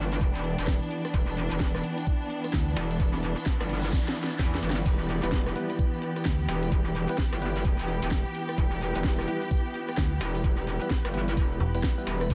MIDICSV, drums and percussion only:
0, 0, Header, 1, 2, 480
1, 0, Start_track
1, 0, Key_signature, 1, "minor"
1, 0, Tempo, 465116
1, 1173, Time_signature, 4, 2, 24, 8
1, 12735, End_track
2, 0, Start_track
2, 0, Title_t, "Drums"
2, 123, Note_on_c, 9, 42, 64
2, 129, Note_on_c, 9, 54, 68
2, 214, Note_on_c, 9, 36, 115
2, 215, Note_off_c, 9, 42, 0
2, 215, Note_on_c, 9, 42, 55
2, 222, Note_off_c, 9, 54, 0
2, 222, Note_on_c, 9, 54, 58
2, 317, Note_off_c, 9, 36, 0
2, 319, Note_off_c, 9, 42, 0
2, 325, Note_off_c, 9, 54, 0
2, 370, Note_on_c, 9, 54, 37
2, 454, Note_on_c, 9, 46, 103
2, 473, Note_off_c, 9, 54, 0
2, 558, Note_off_c, 9, 46, 0
2, 603, Note_on_c, 9, 42, 66
2, 609, Note_on_c, 9, 54, 74
2, 694, Note_on_c, 9, 36, 124
2, 694, Note_on_c, 9, 38, 115
2, 695, Note_off_c, 9, 42, 0
2, 695, Note_on_c, 9, 42, 53
2, 701, Note_off_c, 9, 54, 0
2, 701, Note_on_c, 9, 54, 59
2, 797, Note_off_c, 9, 36, 0
2, 797, Note_off_c, 9, 38, 0
2, 798, Note_off_c, 9, 42, 0
2, 804, Note_off_c, 9, 54, 0
2, 848, Note_on_c, 9, 54, 36
2, 934, Note_on_c, 9, 46, 98
2, 952, Note_off_c, 9, 54, 0
2, 1037, Note_off_c, 9, 46, 0
2, 1082, Note_on_c, 9, 37, 85
2, 1082, Note_on_c, 9, 42, 64
2, 1089, Note_on_c, 9, 54, 68
2, 1174, Note_off_c, 9, 42, 0
2, 1174, Note_on_c, 9, 36, 113
2, 1174, Note_on_c, 9, 42, 55
2, 1181, Note_off_c, 9, 54, 0
2, 1181, Note_on_c, 9, 54, 62
2, 1186, Note_off_c, 9, 37, 0
2, 1277, Note_off_c, 9, 36, 0
2, 1277, Note_off_c, 9, 42, 0
2, 1284, Note_off_c, 9, 54, 0
2, 1329, Note_on_c, 9, 54, 37
2, 1414, Note_on_c, 9, 46, 104
2, 1432, Note_off_c, 9, 54, 0
2, 1518, Note_off_c, 9, 46, 0
2, 1562, Note_on_c, 9, 42, 66
2, 1568, Note_on_c, 9, 54, 74
2, 1652, Note_on_c, 9, 38, 111
2, 1654, Note_off_c, 9, 42, 0
2, 1654, Note_on_c, 9, 36, 112
2, 1654, Note_on_c, 9, 42, 53
2, 1660, Note_off_c, 9, 54, 0
2, 1660, Note_on_c, 9, 54, 56
2, 1756, Note_off_c, 9, 38, 0
2, 1757, Note_off_c, 9, 36, 0
2, 1757, Note_off_c, 9, 42, 0
2, 1763, Note_off_c, 9, 54, 0
2, 1802, Note_on_c, 9, 37, 83
2, 1808, Note_on_c, 9, 54, 38
2, 1892, Note_on_c, 9, 46, 100
2, 1905, Note_off_c, 9, 37, 0
2, 1912, Note_off_c, 9, 54, 0
2, 1996, Note_off_c, 9, 46, 0
2, 2041, Note_on_c, 9, 42, 67
2, 2048, Note_on_c, 9, 54, 70
2, 2134, Note_off_c, 9, 42, 0
2, 2134, Note_on_c, 9, 36, 116
2, 2134, Note_on_c, 9, 42, 56
2, 2140, Note_off_c, 9, 54, 0
2, 2140, Note_on_c, 9, 54, 57
2, 2237, Note_off_c, 9, 36, 0
2, 2237, Note_off_c, 9, 42, 0
2, 2244, Note_off_c, 9, 54, 0
2, 2288, Note_on_c, 9, 54, 35
2, 2373, Note_on_c, 9, 46, 98
2, 2391, Note_off_c, 9, 54, 0
2, 2477, Note_off_c, 9, 46, 0
2, 2521, Note_on_c, 9, 37, 66
2, 2521, Note_on_c, 9, 42, 67
2, 2527, Note_on_c, 9, 54, 72
2, 2612, Note_on_c, 9, 38, 117
2, 2613, Note_off_c, 9, 42, 0
2, 2613, Note_on_c, 9, 36, 118
2, 2613, Note_on_c, 9, 42, 55
2, 2620, Note_off_c, 9, 54, 0
2, 2620, Note_on_c, 9, 54, 61
2, 2624, Note_off_c, 9, 37, 0
2, 2715, Note_off_c, 9, 38, 0
2, 2717, Note_off_c, 9, 36, 0
2, 2717, Note_off_c, 9, 42, 0
2, 2723, Note_off_c, 9, 54, 0
2, 2768, Note_on_c, 9, 54, 35
2, 2854, Note_on_c, 9, 46, 101
2, 2871, Note_off_c, 9, 54, 0
2, 2957, Note_off_c, 9, 46, 0
2, 3001, Note_on_c, 9, 42, 69
2, 3008, Note_on_c, 9, 54, 68
2, 3093, Note_off_c, 9, 42, 0
2, 3093, Note_on_c, 9, 36, 113
2, 3093, Note_on_c, 9, 42, 57
2, 3099, Note_off_c, 9, 54, 0
2, 3099, Note_on_c, 9, 54, 58
2, 3196, Note_off_c, 9, 36, 0
2, 3196, Note_off_c, 9, 42, 0
2, 3203, Note_off_c, 9, 54, 0
2, 3239, Note_on_c, 9, 38, 37
2, 3247, Note_on_c, 9, 54, 36
2, 3333, Note_on_c, 9, 46, 103
2, 3342, Note_off_c, 9, 38, 0
2, 3350, Note_off_c, 9, 54, 0
2, 3436, Note_off_c, 9, 46, 0
2, 3480, Note_on_c, 9, 42, 68
2, 3487, Note_on_c, 9, 54, 70
2, 3571, Note_on_c, 9, 38, 116
2, 3572, Note_off_c, 9, 42, 0
2, 3572, Note_on_c, 9, 42, 52
2, 3573, Note_on_c, 9, 36, 122
2, 3590, Note_off_c, 9, 54, 0
2, 3674, Note_off_c, 9, 38, 0
2, 3675, Note_off_c, 9, 42, 0
2, 3676, Note_off_c, 9, 36, 0
2, 3719, Note_on_c, 9, 37, 80
2, 3726, Note_on_c, 9, 54, 36
2, 3811, Note_on_c, 9, 46, 102
2, 3823, Note_off_c, 9, 37, 0
2, 3829, Note_off_c, 9, 54, 0
2, 3915, Note_off_c, 9, 46, 0
2, 3960, Note_on_c, 9, 42, 69
2, 3967, Note_on_c, 9, 54, 69
2, 4052, Note_off_c, 9, 42, 0
2, 4052, Note_on_c, 9, 36, 114
2, 4052, Note_on_c, 9, 38, 67
2, 4052, Note_on_c, 9, 42, 56
2, 4058, Note_off_c, 9, 54, 0
2, 4058, Note_on_c, 9, 54, 59
2, 4155, Note_off_c, 9, 38, 0
2, 4155, Note_off_c, 9, 42, 0
2, 4156, Note_off_c, 9, 36, 0
2, 4162, Note_off_c, 9, 54, 0
2, 4207, Note_on_c, 9, 54, 35
2, 4213, Note_on_c, 9, 38, 80
2, 4293, Note_on_c, 9, 46, 101
2, 4310, Note_off_c, 9, 54, 0
2, 4316, Note_off_c, 9, 38, 0
2, 4373, Note_on_c, 9, 38, 78
2, 4396, Note_off_c, 9, 46, 0
2, 4441, Note_on_c, 9, 42, 72
2, 4447, Note_on_c, 9, 54, 70
2, 4476, Note_off_c, 9, 38, 0
2, 4532, Note_on_c, 9, 36, 117
2, 4533, Note_off_c, 9, 42, 0
2, 4533, Note_on_c, 9, 38, 86
2, 4533, Note_on_c, 9, 42, 56
2, 4540, Note_off_c, 9, 54, 0
2, 4540, Note_on_c, 9, 54, 59
2, 4635, Note_off_c, 9, 36, 0
2, 4637, Note_off_c, 9, 38, 0
2, 4637, Note_off_c, 9, 42, 0
2, 4643, Note_off_c, 9, 54, 0
2, 4687, Note_on_c, 9, 54, 34
2, 4693, Note_on_c, 9, 38, 93
2, 4773, Note_on_c, 9, 46, 100
2, 4790, Note_off_c, 9, 54, 0
2, 4796, Note_off_c, 9, 38, 0
2, 4853, Note_on_c, 9, 38, 102
2, 4877, Note_off_c, 9, 46, 0
2, 4920, Note_on_c, 9, 42, 72
2, 4927, Note_on_c, 9, 54, 70
2, 4956, Note_off_c, 9, 38, 0
2, 5012, Note_off_c, 9, 42, 0
2, 5012, Note_on_c, 9, 36, 120
2, 5012, Note_on_c, 9, 42, 56
2, 5012, Note_on_c, 9, 49, 74
2, 5018, Note_off_c, 9, 54, 0
2, 5018, Note_on_c, 9, 54, 58
2, 5115, Note_off_c, 9, 36, 0
2, 5115, Note_off_c, 9, 42, 0
2, 5115, Note_off_c, 9, 49, 0
2, 5121, Note_off_c, 9, 54, 0
2, 5166, Note_on_c, 9, 54, 35
2, 5251, Note_on_c, 9, 46, 110
2, 5270, Note_off_c, 9, 54, 0
2, 5354, Note_off_c, 9, 46, 0
2, 5399, Note_on_c, 9, 42, 67
2, 5406, Note_on_c, 9, 54, 68
2, 5490, Note_on_c, 9, 38, 122
2, 5491, Note_off_c, 9, 42, 0
2, 5491, Note_on_c, 9, 42, 52
2, 5493, Note_on_c, 9, 36, 120
2, 5497, Note_off_c, 9, 54, 0
2, 5497, Note_on_c, 9, 54, 53
2, 5593, Note_off_c, 9, 38, 0
2, 5594, Note_off_c, 9, 42, 0
2, 5596, Note_off_c, 9, 36, 0
2, 5601, Note_off_c, 9, 54, 0
2, 5639, Note_on_c, 9, 37, 75
2, 5646, Note_on_c, 9, 54, 33
2, 5731, Note_on_c, 9, 46, 109
2, 5743, Note_off_c, 9, 37, 0
2, 5749, Note_off_c, 9, 54, 0
2, 5834, Note_off_c, 9, 46, 0
2, 5879, Note_on_c, 9, 42, 70
2, 5885, Note_on_c, 9, 54, 66
2, 5972, Note_off_c, 9, 42, 0
2, 5972, Note_on_c, 9, 42, 56
2, 5973, Note_on_c, 9, 36, 123
2, 5979, Note_off_c, 9, 54, 0
2, 5979, Note_on_c, 9, 54, 55
2, 6076, Note_off_c, 9, 36, 0
2, 6076, Note_off_c, 9, 42, 0
2, 6082, Note_off_c, 9, 54, 0
2, 6126, Note_on_c, 9, 54, 34
2, 6212, Note_on_c, 9, 46, 103
2, 6230, Note_off_c, 9, 54, 0
2, 6315, Note_off_c, 9, 46, 0
2, 6359, Note_on_c, 9, 37, 62
2, 6359, Note_on_c, 9, 42, 69
2, 6366, Note_on_c, 9, 54, 70
2, 6451, Note_on_c, 9, 38, 124
2, 6452, Note_off_c, 9, 42, 0
2, 6452, Note_on_c, 9, 42, 56
2, 6453, Note_on_c, 9, 36, 122
2, 6459, Note_off_c, 9, 54, 0
2, 6459, Note_on_c, 9, 54, 57
2, 6463, Note_off_c, 9, 37, 0
2, 6554, Note_off_c, 9, 38, 0
2, 6556, Note_off_c, 9, 36, 0
2, 6556, Note_off_c, 9, 42, 0
2, 6562, Note_off_c, 9, 54, 0
2, 6606, Note_on_c, 9, 54, 34
2, 6691, Note_on_c, 9, 46, 108
2, 6709, Note_off_c, 9, 54, 0
2, 6795, Note_off_c, 9, 46, 0
2, 6840, Note_on_c, 9, 42, 72
2, 6846, Note_on_c, 9, 54, 64
2, 6932, Note_off_c, 9, 42, 0
2, 6932, Note_on_c, 9, 42, 57
2, 6933, Note_on_c, 9, 36, 124
2, 6939, Note_off_c, 9, 54, 0
2, 6939, Note_on_c, 9, 54, 55
2, 7036, Note_off_c, 9, 36, 0
2, 7036, Note_off_c, 9, 42, 0
2, 7042, Note_off_c, 9, 54, 0
2, 7086, Note_on_c, 9, 54, 34
2, 7172, Note_on_c, 9, 46, 112
2, 7190, Note_off_c, 9, 54, 0
2, 7275, Note_off_c, 9, 46, 0
2, 7320, Note_on_c, 9, 42, 68
2, 7326, Note_on_c, 9, 54, 64
2, 7411, Note_on_c, 9, 38, 120
2, 7412, Note_off_c, 9, 42, 0
2, 7412, Note_on_c, 9, 42, 52
2, 7413, Note_on_c, 9, 36, 123
2, 7429, Note_off_c, 9, 54, 0
2, 7514, Note_off_c, 9, 38, 0
2, 7515, Note_off_c, 9, 42, 0
2, 7516, Note_off_c, 9, 36, 0
2, 7560, Note_on_c, 9, 37, 82
2, 7567, Note_on_c, 9, 54, 33
2, 7653, Note_on_c, 9, 46, 106
2, 7663, Note_off_c, 9, 37, 0
2, 7670, Note_off_c, 9, 54, 0
2, 7756, Note_off_c, 9, 46, 0
2, 7800, Note_on_c, 9, 42, 67
2, 7807, Note_on_c, 9, 54, 67
2, 7892, Note_off_c, 9, 42, 0
2, 7892, Note_on_c, 9, 42, 51
2, 7893, Note_on_c, 9, 36, 124
2, 7898, Note_off_c, 9, 54, 0
2, 7898, Note_on_c, 9, 54, 57
2, 7995, Note_off_c, 9, 42, 0
2, 7996, Note_off_c, 9, 36, 0
2, 8002, Note_off_c, 9, 54, 0
2, 8046, Note_on_c, 9, 54, 32
2, 8132, Note_on_c, 9, 46, 113
2, 8150, Note_off_c, 9, 54, 0
2, 8235, Note_off_c, 9, 46, 0
2, 8280, Note_on_c, 9, 42, 71
2, 8286, Note_on_c, 9, 54, 69
2, 8371, Note_on_c, 9, 38, 127
2, 8373, Note_off_c, 9, 42, 0
2, 8373, Note_on_c, 9, 36, 121
2, 8373, Note_on_c, 9, 42, 52
2, 8379, Note_off_c, 9, 54, 0
2, 8379, Note_on_c, 9, 54, 55
2, 8475, Note_off_c, 9, 38, 0
2, 8476, Note_off_c, 9, 36, 0
2, 8476, Note_off_c, 9, 42, 0
2, 8482, Note_off_c, 9, 54, 0
2, 8526, Note_on_c, 9, 54, 33
2, 8612, Note_on_c, 9, 46, 112
2, 8630, Note_off_c, 9, 54, 0
2, 8715, Note_off_c, 9, 46, 0
2, 8760, Note_on_c, 9, 37, 80
2, 8760, Note_on_c, 9, 42, 67
2, 8767, Note_on_c, 9, 54, 63
2, 8853, Note_off_c, 9, 42, 0
2, 8853, Note_on_c, 9, 36, 127
2, 8853, Note_on_c, 9, 42, 53
2, 8860, Note_off_c, 9, 54, 0
2, 8860, Note_on_c, 9, 54, 54
2, 8864, Note_off_c, 9, 37, 0
2, 8956, Note_off_c, 9, 36, 0
2, 8957, Note_off_c, 9, 42, 0
2, 8963, Note_off_c, 9, 54, 0
2, 9008, Note_on_c, 9, 54, 32
2, 9093, Note_on_c, 9, 46, 111
2, 9111, Note_off_c, 9, 54, 0
2, 9196, Note_off_c, 9, 46, 0
2, 9240, Note_on_c, 9, 42, 67
2, 9246, Note_on_c, 9, 54, 66
2, 9331, Note_on_c, 9, 38, 121
2, 9333, Note_off_c, 9, 42, 0
2, 9333, Note_on_c, 9, 36, 121
2, 9333, Note_on_c, 9, 42, 51
2, 9339, Note_off_c, 9, 54, 0
2, 9339, Note_on_c, 9, 54, 52
2, 9435, Note_off_c, 9, 38, 0
2, 9436, Note_off_c, 9, 36, 0
2, 9436, Note_off_c, 9, 42, 0
2, 9442, Note_off_c, 9, 54, 0
2, 9481, Note_on_c, 9, 37, 78
2, 9487, Note_on_c, 9, 54, 35
2, 9573, Note_on_c, 9, 46, 113
2, 9584, Note_off_c, 9, 37, 0
2, 9590, Note_off_c, 9, 54, 0
2, 9676, Note_off_c, 9, 46, 0
2, 9721, Note_on_c, 9, 42, 65
2, 9727, Note_on_c, 9, 54, 65
2, 9813, Note_off_c, 9, 42, 0
2, 9813, Note_on_c, 9, 42, 53
2, 9814, Note_on_c, 9, 36, 125
2, 9820, Note_off_c, 9, 54, 0
2, 9820, Note_on_c, 9, 54, 56
2, 9916, Note_off_c, 9, 42, 0
2, 9917, Note_off_c, 9, 36, 0
2, 9923, Note_off_c, 9, 54, 0
2, 9968, Note_on_c, 9, 54, 33
2, 10053, Note_on_c, 9, 46, 117
2, 10071, Note_off_c, 9, 54, 0
2, 10156, Note_off_c, 9, 46, 0
2, 10202, Note_on_c, 9, 37, 64
2, 10202, Note_on_c, 9, 42, 66
2, 10208, Note_on_c, 9, 54, 64
2, 10293, Note_on_c, 9, 38, 126
2, 10294, Note_off_c, 9, 42, 0
2, 10294, Note_on_c, 9, 36, 127
2, 10294, Note_on_c, 9, 42, 51
2, 10301, Note_off_c, 9, 54, 0
2, 10301, Note_on_c, 9, 54, 55
2, 10305, Note_off_c, 9, 37, 0
2, 10396, Note_off_c, 9, 38, 0
2, 10397, Note_off_c, 9, 36, 0
2, 10398, Note_off_c, 9, 42, 0
2, 10404, Note_off_c, 9, 54, 0
2, 10449, Note_on_c, 9, 54, 30
2, 10534, Note_on_c, 9, 46, 111
2, 10552, Note_off_c, 9, 54, 0
2, 10637, Note_off_c, 9, 46, 0
2, 10682, Note_on_c, 9, 42, 66
2, 10688, Note_on_c, 9, 54, 64
2, 10774, Note_off_c, 9, 42, 0
2, 10774, Note_on_c, 9, 36, 126
2, 10774, Note_on_c, 9, 42, 51
2, 10780, Note_off_c, 9, 54, 0
2, 10780, Note_on_c, 9, 54, 57
2, 10877, Note_off_c, 9, 36, 0
2, 10877, Note_off_c, 9, 42, 0
2, 10883, Note_off_c, 9, 54, 0
2, 10929, Note_on_c, 9, 54, 33
2, 11013, Note_on_c, 9, 46, 118
2, 11032, Note_off_c, 9, 54, 0
2, 11117, Note_off_c, 9, 46, 0
2, 11162, Note_on_c, 9, 42, 63
2, 11168, Note_on_c, 9, 54, 65
2, 11253, Note_on_c, 9, 38, 113
2, 11254, Note_off_c, 9, 42, 0
2, 11254, Note_on_c, 9, 36, 122
2, 11254, Note_on_c, 9, 42, 47
2, 11260, Note_off_c, 9, 54, 0
2, 11260, Note_on_c, 9, 54, 55
2, 11356, Note_off_c, 9, 38, 0
2, 11357, Note_off_c, 9, 36, 0
2, 11357, Note_off_c, 9, 42, 0
2, 11363, Note_off_c, 9, 54, 0
2, 11402, Note_on_c, 9, 37, 87
2, 11408, Note_on_c, 9, 54, 32
2, 11494, Note_on_c, 9, 46, 114
2, 11505, Note_off_c, 9, 37, 0
2, 11511, Note_off_c, 9, 54, 0
2, 11597, Note_off_c, 9, 46, 0
2, 11642, Note_on_c, 9, 42, 63
2, 11648, Note_on_c, 9, 54, 66
2, 11734, Note_off_c, 9, 42, 0
2, 11734, Note_on_c, 9, 36, 124
2, 11734, Note_on_c, 9, 42, 51
2, 11741, Note_off_c, 9, 54, 0
2, 11741, Note_on_c, 9, 54, 55
2, 11837, Note_off_c, 9, 36, 0
2, 11837, Note_off_c, 9, 42, 0
2, 11844, Note_off_c, 9, 54, 0
2, 11889, Note_on_c, 9, 54, 33
2, 11974, Note_on_c, 9, 46, 104
2, 11992, Note_off_c, 9, 54, 0
2, 12077, Note_off_c, 9, 46, 0
2, 12122, Note_on_c, 9, 42, 67
2, 12128, Note_on_c, 9, 54, 66
2, 12213, Note_on_c, 9, 38, 126
2, 12214, Note_off_c, 9, 42, 0
2, 12214, Note_on_c, 9, 36, 127
2, 12214, Note_on_c, 9, 42, 49
2, 12220, Note_off_c, 9, 54, 0
2, 12220, Note_on_c, 9, 54, 54
2, 12316, Note_off_c, 9, 38, 0
2, 12317, Note_off_c, 9, 36, 0
2, 12317, Note_off_c, 9, 42, 0
2, 12324, Note_off_c, 9, 54, 0
2, 12368, Note_on_c, 9, 54, 32
2, 12453, Note_on_c, 9, 46, 107
2, 12471, Note_off_c, 9, 54, 0
2, 12557, Note_off_c, 9, 46, 0
2, 12602, Note_on_c, 9, 37, 86
2, 12602, Note_on_c, 9, 42, 64
2, 12608, Note_on_c, 9, 54, 65
2, 12694, Note_off_c, 9, 42, 0
2, 12694, Note_on_c, 9, 36, 125
2, 12694, Note_on_c, 9, 42, 50
2, 12701, Note_off_c, 9, 54, 0
2, 12701, Note_on_c, 9, 54, 59
2, 12705, Note_off_c, 9, 37, 0
2, 12735, Note_off_c, 9, 36, 0
2, 12735, Note_off_c, 9, 42, 0
2, 12735, Note_off_c, 9, 54, 0
2, 12735, End_track
0, 0, End_of_file